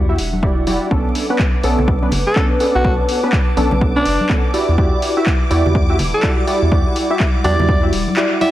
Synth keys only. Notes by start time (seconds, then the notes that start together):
0.09 E4 F#4 G4 E5
0.42 E4 F#4 G4 D5
0.67 E4 F#4 G4 D5
0.91 B3 C#4 D4 A4
1.30 B3 C#4 D4 B4
1.64 B3 C#4 D4 A4
2.02 B3 C#4 D4 B4
2.36 B3 C#4 D4 A4
2.60 B3 C#4 D4 A4
2.84 B3 C#4 D4 A4
3.23 B3 C#4 D4 B4
3.57 B3 C#4 D4 A4
3.96 B3 C#4 D4 B4
4.30 B3 C#4 D4 A4
4.54 E4 F#4 G4 D5
4.78 E4 F#4 G4 D5
5.17 E4 F#4 G4 E5
5.50 E4 F#4 G4 D5
5.89 E4 F#4 G4 E5
6.23 E4 F#4 G4 D5
6.47 E4 F#4 G4 D5
6.71 E4 F#4 G4 D5
7.10 E4 F#4 G4 E5
7.44 E4 F#4 G4 D5
7.83 E4 F#4 G4 E5
8.17 E4 F#4 G4 D5
8.41 E4 F#4 G4 D5